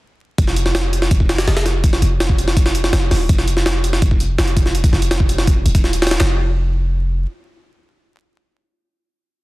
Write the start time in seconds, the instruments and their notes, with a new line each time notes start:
0.38 808-style bass F1, kick, closed hi-hat
0.47 snare
0.56 closed hi-hat
0.66 snare
0.75 snare, closed hi-hat
0.93 closed hi-hat
1.02 snare
1.11 808-style bass F1, kick, closed hi-hat
1.20 kick
1.29 snare, closed hi-hat
1.38 snare, closed hi-hat
1.47 808-style bass F1, snare, closed hi-hat
1.57 snare, closed hi-hat
1.66 snare, closed hi-hat
1.84 kick, closed hi-hat
1.93 snare
2.02 808-style bass F1, closed hi-hat
2.20 snare, closed hi-hat
2.29 kick
2.38 closed hi-hat
2.48 snare
2.57 kick, closed hi-hat
2.66 snare
2.75 closed hi-hat
2.84 snare
2.93 808-style bass F1, snare, closed hi-hat
3.11 808-style bass D#1, snare, open hi-hat
3.29 808-style bass F1, kick, closed hi-hat
3.38 snare
3.48 closed hi-hat
3.57 snare
3.66 snare, closed hi-hat
3.84 closed hi-hat
3.93 snare
4.02 808-style bass F1, kick, closed hi-hat
4.11 kick
4.20 closed hi-hat
4.38 808-style bass F1, snare, closed hi-hat
4.47 closed hi-hat
4.57 kick, closed hi-hat
4.66 snare
4.75 closed hi-hat
4.84 kick, closed hi-hat
4.93 808-style bass F1, snare
5.02 closed hi-hat
5.11 snare, closed hi-hat
5.20 kick
5.29 closed hi-hat
5.38 snare
5.47 kick, closed hi-hat
5.65 808-style bass D#1, closed hi-hat
5.75 kick, closed hi-hat
5.84 snare
5.93 closed hi-hat
6.02 snare, closed hi-hat
6.07 snare, closed hi-hat
6.11 snare, closed hi-hat
6.20 808-style bass F1, snare, clap